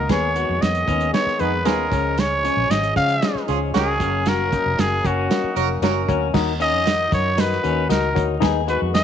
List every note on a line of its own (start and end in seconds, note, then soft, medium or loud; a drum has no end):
0.00 1.89 D#3 medium
0.00 0.10 A#4 medium
0.09 0.43 D#2 medium
0.09 1.90 G#3 medium
0.09 0.28 B3 medium
0.09 1.90 B3 medium
0.09 0.28 D#4 medium
0.09 0.31 G#4 medium
0.09 3.96 G#4 medium
0.09 0.29 G#4 medium
0.09 0.29 B4 loud
0.09 0.63 C#5 medium
0.09 kick medium
0.09 snare loud
0.09 closed hi-hat medium
0.35 0.54 B3 medium
0.35 0.54 D#4 medium
0.35 0.57 F#4 medium
0.35 0.55 G#4 medium
0.35 0.55 B4 medium
0.35 closed hi-hat medium
0.49 0.60 F2 medium
0.61 0.85 F2 medium
0.61 0.80 B3 medium
0.61 0.80 D#4 medium
0.61 0.81 G#4 medium
0.61 0.80 C#5 medium
0.61 1.13 D#5 loud
0.61 snare loud
0.61 closed hi-hat medium
0.75 closed hi-hat medium
0.87 1.10 D#2 medium
0.87 1.06 B3 medium
0.87 1.09 C#4 medium
0.87 1.06 D#4 medium
0.87 1.06 G#4 medium
0.87 1.07 B4 medium
0.87 kick medium
0.87 closed hi-hat medium
1.00 closed hi-hat soft
1.13 1.32 B3 medium
1.13 1.32 D#4 medium
1.13 1.63 D#4 medium
1.13 1.32 G#4 medium
1.13 1.32 B4 medium
1.13 1.41 C#5 loud
1.13 snare loud
1.13 closed hi-hat medium
1.26 muted fingered electric bass stroke soft
1.26 snare soft
1.39 1.65 F2 medium
1.39 1.58 B3 medium
1.39 1.52 B3 medium
1.39 1.58 D#4 medium
1.39 1.52 D#4 medium
1.39 1.58 G#4 medium
1.39 1.51 G#4 medium
1.39 1.58 B4 medium
1.39 1.67 B4 loud
1.39 closed hi-hat medium
1.64 1.88 D#2 medium
1.64 1.84 B3 medium
1.64 2.03 C#4 medium
1.64 1.84 D#4 medium
1.64 1.87 D#4 medium
1.64 2.02 F4 medium
1.64 2.02 G#4 loud
1.64 1.84 G#4 medium
1.64 2.21 A#4 medium
1.64 1.84 B4 loud
1.64 snare loud
1.64 closed hi-hat medium
1.91 2.48 C#2 loud
1.91 3.98 F3 medium
1.91 3.98 G#3 medium
1.91 2.33 C#4 medium
1.91 3.98 C#4 medium
1.91 2.14 C#4 medium
1.91 2.33 F4 medium
1.91 2.33 G#4 medium
1.91 2.33 C#5 medium
1.91 kick loud
1.91 closed hi-hat medium
2.17 2.72 C#5 medium
2.17 snare loud
2.17 closed hi-hat medium
2.44 2.63 C#4 medium
2.44 2.66 C#4 medium
2.44 2.63 F4 medium
2.44 2.63 G#4 medium
2.44 2.63 C#5 medium
2.44 closed hi-hat medium
2.57 2.68 A#1 medium
2.70 2.92 G#1 medium
2.70 2.89 C#4 medium
2.70 3.20 D#4 medium
2.70 2.89 F4 medium
2.70 2.89 G#4 medium
2.70 2.89 C#5 medium
2.70 2.96 D#5 loud
2.70 snare loud
2.70 closed hi-hat loud
2.83 closed hi-hat medium
2.96 3.19 C#3 medium
2.96 3.15 C#4 medium
2.96 3.15 F4 medium
2.96 3.15 G#4 medium
2.96 3.15 C#5 medium
2.96 3.45 F5 loud
2.96 kick medium
2.96 closed hi-hat medium
3.09 closed hi-hat medium
3.22 3.41 C#4 medium
3.22 3.44 D#4 medium
3.22 3.41 F4 medium
3.22 3.41 G#4 medium
3.22 3.41 C#5 medium
3.22 snare loud
3.22 closed hi-hat loud
3.35 muted fingered electric bass stroke soft
3.35 snare soft
3.47 3.71 C#2 medium
3.47 3.59 C#4 medium
3.47 3.70 C#4 medium
3.47 3.67 C#4 medium
3.47 3.59 F4 medium
3.47 3.67 F4 medium
3.47 3.59 G#4 loud
3.47 3.67 G#4 medium
3.47 3.67 C#5 medium
3.47 closed hi-hat medium
3.74 3.97 C#2 medium
3.74 4.11 C#4 loud
3.74 3.93 C#4 medium
3.74 3.96 D#4 medium
3.74 3.93 F4 medium
3.74 4.11 F#4 medium
3.74 3.93 G#4 medium
3.74 4.30 G#4 loud
3.74 4.11 A#4 loud
3.74 3.93 C#5 medium
3.74 snare loud
3.74 closed hi-hat medium
4.00 4.56 F#1 loud
4.00 6.33 F#3 medium
4.00 6.32 A#3 medium
4.00 4.42 C#4 medium
4.00 4.22 C#4 medium
4.00 6.33 C#4 medium
4.00 4.42 F#4 medium
4.00 4.42 A#4 medium
4.00 6.33 A#4 medium
4.00 4.42 C#5 medium
4.00 kick loud
4.00 closed hi-hat medium
4.26 4.48 F#4 medium
4.26 4.82 A#4 loud
4.26 snare loud
4.26 closed hi-hat medium
4.53 4.71 C#4 medium
4.53 4.74 D#4 medium
4.53 4.71 F#4 medium
4.53 4.71 A#4 medium
4.53 4.71 C#5 medium
4.53 kick medium
4.53 closed hi-hat medium
4.66 4.77 F1 medium
4.79 5.01 F#1 medium
4.79 4.97 C#4 medium
4.79 4.97 F#4 medium
4.79 5.08 G#4 loud
4.79 4.97 A#4 medium
4.79 4.98 C#5 medium
4.79 snare loud
4.79 closed hi-hat loud
5.04 5.27 F#1 medium
5.04 5.23 C#4 medium
5.04 5.26 C#4 medium
5.04 5.23 F#4 medium
5.04 5.83 F#4 medium
5.04 5.23 A#4 medium
5.04 5.23 C#5 medium
5.04 kick loud
5.04 closed hi-hat medium
5.30 5.49 C#4 medium
5.30 5.80 D#4 medium
5.30 5.49 F#4 medium
5.30 5.49 A#4 medium
5.30 5.49 C#5 medium
5.30 snare loud
5.30 closed hi-hat loud
5.44 muted fingered electric bass stroke soft
5.55 5.79 F1 medium
5.55 5.67 C#4 medium
5.55 5.75 C#4 medium
5.55 5.67 F#4 medium
5.55 5.75 F#4 medium
5.55 5.67 A#4 loud
5.55 5.75 A#4 medium
5.55 5.75 C#5 medium
5.55 closed hi-hat medium
5.82 6.04 F#1 medium
5.82 6.01 C#4 loud
5.82 6.20 C#4 medium
5.82 6.04 D#4 medium
5.82 6.01 F#4 loud
5.82 6.20 F#4 loud
5.82 6.20 A#4 medium
5.82 6.01 A#4 loud
5.82 6.01 C#5 loud
5.82 snare loud
5.82 closed hi-hat medium
6.09 6.31 D2 loud
6.09 6.30 C#4 medium
6.09 6.27 C#4 loud
6.09 6.27 F#4 loud
6.09 6.27 A#4 loud
6.09 6.27 C#5 loud
6.09 kick medium
6.09 closed hi-hat medium
6.34 6.74 D#2 medium
6.34 9.04 D#3 medium
6.34 6.53 D#4 loud
6.34 6.53 F#4 loud
6.34 8.41 F#4 medium
6.34 6.53 A#4 loud
6.34 6.53 D#5 loud
6.34 kick loud
6.34 snare loud
6.34 crash medium
6.60 6.81 C#4 medium
6.60 6.79 D#4 medium
6.60 6.79 F#4 medium
6.60 6.79 A#4 medium
6.60 6.79 D#5 medium
6.60 7.09 D#5 loud
6.60 closed hi-hat medium
6.74 7.07 F2 medium
6.85 7.35 D#4 medium
6.85 7.05 D#4 medium
6.85 7.05 F#4 medium
6.85 7.05 A#4 medium
6.85 7.05 D#5 medium
6.85 snare loud
6.85 closed hi-hat loud
7.12 7.57 F#2 medium
7.12 7.31 D#4 medium
7.12 7.31 F#4 medium
7.12 7.31 A#4 medium
7.12 7.42 C#5 medium
7.12 7.31 D#5 medium
7.12 kick loud
7.12 closed hi-hat medium
7.38 7.59 D#4 medium
7.38 7.57 D#4 medium
7.38 7.57 F#4 medium
7.38 7.57 A#4 medium
7.38 7.90 B4 medium
7.38 7.57 D#5 medium
7.38 snare loud
7.38 closed hi-hat loud
7.52 snare soft
7.63 7.87 D#2 medium
7.63 7.85 C#4 medium
7.63 7.83 D#4 medium
7.63 7.83 F#4 medium
7.63 7.83 A#4 medium
7.63 7.83 D#5 medium
7.63 closed hi-hat medium
7.89 8.12 C#2 medium
7.89 8.09 D#4 medium
7.89 8.11 D#4 medium
7.89 8.09 F#4 medium
7.89 8.09 A#4 medium
7.89 8.27 A#4 medium
7.89 8.09 D#5 loud
7.89 snare loud
7.89 closed hi-hat loud
8.15 8.39 D2 medium
8.15 8.34 D#4 medium
8.15 8.37 D#4 medium
8.15 8.34 F#4 medium
8.15 8.35 A#4 medium
8.15 8.35 C#5 loud
8.15 kick medium
8.15 closed hi-hat medium
8.41 8.76 D#2 medium
8.41 9.04 G#3 medium
8.41 9.04 B3 medium
8.41 8.60 D#4 loud
8.41 8.60 G#4 loud
8.41 8.63 G#4 medium
8.41 9.04 G#4 medium
8.41 8.60 B4 loud
8.41 8.60 D#5 loud
8.41 kick loud
8.41 snare loud
8.41 closed hi-hat medium
8.67 8.87 D#4 medium
8.67 8.89 F#4 medium
8.67 8.86 G#4 medium
8.67 8.86 B4 medium
8.67 8.80 B4 medium
8.67 8.87 D#5 medium
8.67 closed hi-hat medium
8.82 9.04 F2 medium
8.93 9.04 D#4 medium
8.93 9.04 G#4 medium
8.93 9.04 B4 medium
8.93 9.04 D#5 medium
8.93 9.04 D#5 loud
8.93 snare loud
8.93 closed hi-hat loud